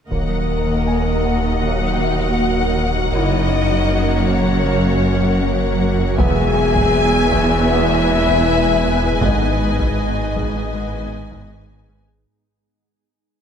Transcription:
0.09 3.15 D#1 medium
0.09 3.10 D#2 soft
0.09 0.23 D#3 medium
0.09 6.14 F#3 medium
0.09 0.38 F#3 soft
0.09 1.58 A#3 medium
0.09 6.14 A#3 medium
0.09 0.38 A#3 soft
0.09 6.14 F#4 medium
0.09 6.14 A#4 medium
0.09 6.14 A#4 soft
0.09 1.58 A#4 medium
0.09 3.10 D#5 soft
0.09 6.14 F#5 soft
0.09 taiko medium
0.29 0.41 F#3 soft
0.67 0.79 D#3 medium
0.86 0.97 A#3 soft
0.86 3.11 G#5 soft
1.06 1.17 A#3 soft
1.24 1.36 D#3 medium
1.24 3.49 F#5 soft
1.43 1.55 A#3 medium
1.62 1.74 D#3 medium
1.62 1.90 F#3 soft
1.62 1.90 A#3 soft
1.62 3.14 F#4 medium
1.62 3.12 F#5 medium
1.82 1.93 F#3 medium
2.01 2.12 A#3 medium
2.20 2.31 D#3 medium
2.39 2.50 A#3 medium
2.77 2.88 D#3 medium
2.96 3.07 D#4 medium
3.13 6.18 F#1 medium
3.13 6.20 F#1 medium
3.13 6.18 F#2 medium
3.13 3.41 F#3 soft
3.13 3.26 F#3 medium
3.13 3.42 A#3 soft
3.13 4.28 D#4 medium
3.13 5.39 E4 soft
3.13 6.14 C#5 soft
3.13 4.29 D#5 medium
3.34 3.45 A#3 medium
3.71 3.83 F#3 medium
3.91 4.02 C#4 soft
4.10 4.21 C#4 soft
4.28 4.40 F#3 medium
4.28 5.80 C#4 medium
4.28 5.80 C#5 medium
4.47 4.59 C#4 medium
4.67 4.78 F#3 medium
4.67 4.94 F#3 medium
4.67 4.94 A#3 medium
4.85 4.97 A#3 medium
5.04 5.16 C#4 medium
5.24 5.35 F#3 medium
5.42 5.54 C#4 medium
5.81 5.92 F#3 medium
6.00 6.11 F#4 medium
6.17 9.22 E1 medium
6.17 9.24 E1 medium
6.17 9.22 E2 medium
6.17 6.46 E3 medium
6.17 6.30 E3 medium
6.17 12.25 G#3 medium
6.17 12.25 B3 medium
6.17 6.46 B3 medium
6.17 9.22 E4 medium
6.17 12.25 G#4 medium
6.17 7.66 G#4 loud
6.17 12.02 B4 medium
6.17 9.18 E5 medium
6.17 12.02 G#5 medium
6.17 7.66 G#5 loud
6.17 taiko medium
6.37 6.49 G#3 medium
6.56 8.80 G#5 medium
6.75 6.87 E3 medium
6.75 taiko medium
6.95 7.06 B3 medium
7.14 7.25 B3 medium
7.32 7.44 E3 medium
7.32 taiko medium
7.53 7.64 B3 medium
7.70 7.98 E3 medium
7.70 7.83 E3 medium
7.70 7.98 B3 medium
7.70 9.23 E4 medium
7.70 9.22 E5 medium
7.91 8.02 G#3 medium
8.10 8.21 B3 medium
8.27 8.40 E3 medium
8.27 taiko medium
8.47 8.58 B3 medium
8.86 8.97 E3 medium
9.04 9.15 E4 medium
9.22 12.02 G#1 soft
9.22 12.26 G#1 medium
9.22 12.02 G#2 medium
9.22 9.50 D#3 soft
9.22 9.34 G#3 medium
9.22 9.50 B3 soft
9.22 11.50 D#4 medium
9.22 12.26 D#4 medium
9.22 11.46 D#5 medium
9.22 12.02 D#5 medium
9.22 taiko medium
9.42 9.53 B3 medium
9.80 9.91 G#3 medium
9.80 taiko medium
9.99 10.10 D#4 medium
10.19 10.30 D#4 medium
10.36 10.48 G#3 medium
10.36 taiko medium
10.56 10.67 D#4 medium
10.74 11.02 D#3 soft
10.74 10.86 G#3 medium
10.74 11.02 B3 soft
10.94 11.05 B3 medium
11.13 11.24 D#4 medium
11.31 11.43 G#3 medium
11.31 taiko medium
11.50 11.62 D#4 medium
11.89 12.00 G#3 medium
12.08 12.19 G#4 medium

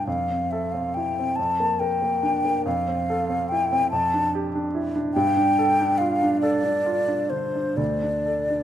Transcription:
0.07 1.34 F2 soft
0.07 0.52 F5 medium
0.30 0.65 C4 soft
0.51 0.87 A4 soft
0.51 0.73 E5 medium
0.72 1.08 C4 soft
0.72 0.96 F5 medium
0.94 1.30 E4 soft
0.94 1.37 G5 medium
1.19 1.39 C4 soft
1.36 2.62 F2 soft
1.36 1.81 A5 medium
1.60 1.94 A#3 soft
1.80 2.15 A#4 soft
1.80 2.65 G5 medium
2.02 2.36 A#3 soft
2.23 2.57 D4 soft
2.45 2.66 A#3 soft
2.66 3.88 F2 medium
2.66 3.50 F5 medium
2.88 3.21 C4 soft
3.10 3.42 A4 soft
3.30 3.62 C4 soft
3.49 3.84 E4 soft
3.49 3.90 G5 medium
3.72 3.92 C4 soft
3.91 5.12 F2 medium
3.91 4.32 A5 medium
4.14 4.46 D4 soft
4.35 4.67 G4 soft
4.55 4.87 D4 soft
4.75 5.07 E4 soft
4.96 5.16 D4 soft
5.14 7.75 G2 medium
5.14 5.99 G5 medium
5.37 5.69 D4 soft
5.59 5.91 A4 soft
5.81 6.13 D4 soft
5.98 6.34 F4 soft
5.98 6.40 F5 medium
6.23 6.56 D4 soft
6.41 6.77 A4 soft
6.41 7.31 D5 medium
6.64 6.99 D4 soft
6.86 7.22 F4 soft
7.08 7.45 D4 soft
7.30 7.68 D3 soft
7.30 7.78 C5 medium
7.55 7.78 D4 soft
7.77 8.63 D2 soft
7.77 8.63 D5 medium
8.02 8.41 D4 soft
8.26 8.63 A4 soft
8.50 8.63 D4 soft

